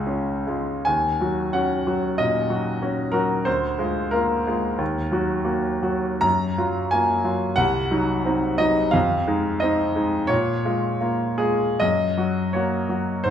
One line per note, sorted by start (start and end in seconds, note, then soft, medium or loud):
0.00 0.81 C#2 soft
0.00 0.47 G#3 soft
0.00 0.07 F4 soft
0.00 0.84 G#4 medium
0.07 0.42 C#4 soft
0.07 0.42 F4 soft
0.47 0.82 G#3 soft
0.47 0.82 F4 soft
0.85 2.15 D#2 soft
0.85 1.53 G#5 medium
1.21 1.50 F#3 soft
1.21 1.50 F#4 soft
1.53 1.83 C#4 soft
1.53 1.83 F#4 soft
1.53 2.18 F#5 medium
1.87 2.16 F#3 soft
1.87 2.16 F#4 soft
2.18 2.70 A#2 soft
2.18 3.14 D#5 medium
2.50 2.79 F#3 soft
2.50 2.79 F#4 soft
2.82 3.11 C#4 soft
2.82 3.11 F#4 soft
3.12 3.43 F#3 soft
3.12 3.43 F#4 soft
3.12 3.45 A#4 medium
3.45 4.76 D2 soft
3.45 4.13 C5 medium
3.79 4.10 G#3 soft
3.79 4.10 F4 soft
4.11 4.44 A#3 soft
4.11 4.44 F4 soft
4.11 6.23 A#4 medium
4.47 4.77 G#3 soft
4.47 4.77 F4 soft
4.78 6.19 D#2 soft
5.12 5.43 F#3 soft
5.12 5.43 F#4 soft
5.44 5.79 A#3 soft
5.44 5.80 F#4 soft
5.83 6.19 F#3 soft
5.83 6.19 F#4 soft
6.21 7.54 F#2 soft
6.21 6.92 A#5 medium
6.58 6.89 F#3 soft
6.58 6.89 F4 soft
6.91 7.23 A#3 soft
6.91 7.23 F4 soft
6.91 7.58 G#5 medium
7.24 7.55 F#3 soft
7.24 7.55 F4 soft
7.56 8.89 C2 soft
7.56 8.59 F#5 medium
7.91 8.22 F#3 soft
7.91 8.23 D#4 soft
8.25 8.56 C4 soft
8.25 8.57 D#4 soft
8.58 8.91 F#3 soft
8.58 8.91 D#4 soft
8.58 8.93 D#5 medium
8.91 10.26 F2 soft
8.91 9.61 F5 medium
9.27 9.59 G#3 soft
9.27 9.59 D#4 soft
9.60 9.93 C4 soft
9.60 9.94 D#4 soft
9.60 10.30 D#5 medium
9.95 10.27 G#3 soft
9.95 10.27 D#4 soft
10.27 11.77 A#2 soft
10.27 11.40 C#5 medium
10.65 10.98 G#3 soft
10.65 10.98 F4 soft
11.01 11.37 A#3 soft
11.01 11.37 F4 soft
11.38 11.77 G#3 soft
11.38 11.77 F4 soft
11.38 11.80 G#4 medium
11.80 13.22 F#2 soft
11.80 12.53 D#5 medium
12.17 12.50 F#3 soft
12.17 12.51 F#4 soft
12.53 12.87 A#3 soft
12.53 12.87 F#4 soft
12.53 13.26 C#5 soft
12.89 13.22 F#3 soft
12.89 13.23 F#4 soft
13.24 13.30 G#2 soft
13.24 13.30 C5 medium